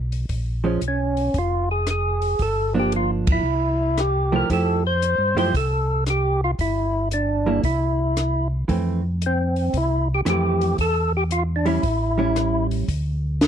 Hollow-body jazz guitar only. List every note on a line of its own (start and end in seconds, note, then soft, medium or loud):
0.64 0.80 F3 medium
0.64 0.80 G#3 medium
0.64 0.80 C#4 medium
2.74 3.41 F3 soft
2.74 3.41 A#3 medium
2.74 3.41 D4 medium
4.32 4.47 F3 medium
4.32 4.48 A3 medium
4.32 4.48 E4 medium
4.32 4.48 G4 medium
4.50 4.81 F3 medium
4.50 4.81 A3 soft
4.50 4.81 E4 medium
4.50 4.82 G4 medium
5.37 5.52 F3 medium
5.37 5.52 A3 medium
5.37 5.52 E4 medium
5.37 5.53 G4 medium
7.46 7.62 G3 medium
7.46 7.62 A#3 medium
7.46 7.63 E4 medium
8.68 9.00 E3 medium
8.68 9.00 A3 soft
8.68 9.01 C4 medium
10.25 10.78 E3 soft
10.25 10.79 A3 medium
10.25 10.79 C4 medium
11.65 11.81 G3 medium
11.65 11.82 C#4 medium
11.65 11.82 E4 medium
12.18 12.84 G3 medium
12.18 12.85 C#4 medium
12.18 12.85 E4 medium